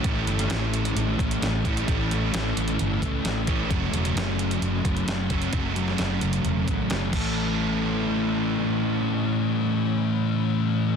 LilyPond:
<<
  \new Staff \with { instrumentName = "Overdriven electric guitar" } { \time 4/4 \key a \mixolydian \tempo 4 = 131 <a, e g cis' g'>2.~ <a, e g cis' g'>8 <a, e g cis' g'>8 | <a, e g cis' g'>2.~ <a, e g cis' g'>8 <a, e g cis' g'>8 | <fis a cis' fis'>2.~ <fis a cis' fis'>8 <fis a cis' fis'>8 | <fis a cis' fis'>2.~ <fis a cis' fis'>8 <a, e g cis' e' a'>8~ |
<a, e g cis' e' a'>1~ | <a, e g cis' e' a'>1 | }
  \new Staff \with { instrumentName = "Distorted electric guitar" } { \clef bass \time 4/4 \key a \mixolydian <a, e a>8 <e a>8 <a, e a>4. <e a>8 <a, e a>8 <e a>8 | <a, e a>8 <e a>8 <a, e a>4. <e a>8 <a, e a>8 <e a>8 | <fis, cis fis>8 <cis fis>8 <fis, cis fis>4. <cis fis>8 <fis, cis fis>8 <cis fis>8 | <fis, cis fis>8 <cis fis>8 <fis, cis fis>4. <cis fis>8 <fis, cis fis>8 <a, e a>8~ |
<a, e a>1~ | <a, e a>1 | }
  \new Staff \with { instrumentName = "Fingered electric bass" } { \clef bass \time 4/4 \key a \mixolydian a,,8 g,,8 a,,4 a,,8 a,,8 a,,4 | a,,4 a,,8 a,,8 g,,8 cis,8 a,,4 | fis,,8 e,,8 fis,,4 fis,,8 fis,,8 fis,,4 | fis,,4 fis,,8 fis,,8 e,,8 a,,8 fis,,8 a,,8~ |
a,,1~ | a,,1 | }
  \new DrumStaff \with { instrumentName = "Drums" } \drummode { \time 4/4 <hh bd>8 hh16 <hh sn>16 <hh sn>8 hh16 hh16 hh8 <hh bd>16 hh16 <hh sn>8 <hh bd>16 hh16 | <hh bd>8 hh8 <hh sn>8 hh16 hh16 hh8 <hh bd>8 <hh sn>8 <hh bd>8 | <hh bd>8 hh16 hh16 <hh sn>8 hh16 hh16 hh8 <hh bd>16 hh16 <hh sn>8 <hh bd>16 hh16 | <hh bd>8 hh16 sn16 <hh sn>8 hh16 hh16 hh8 <hh bd>8 <hh sn>8 <cymc bd>8 |
r4 r4 r4 r4 | r4 r4 r4 r4 | }
>>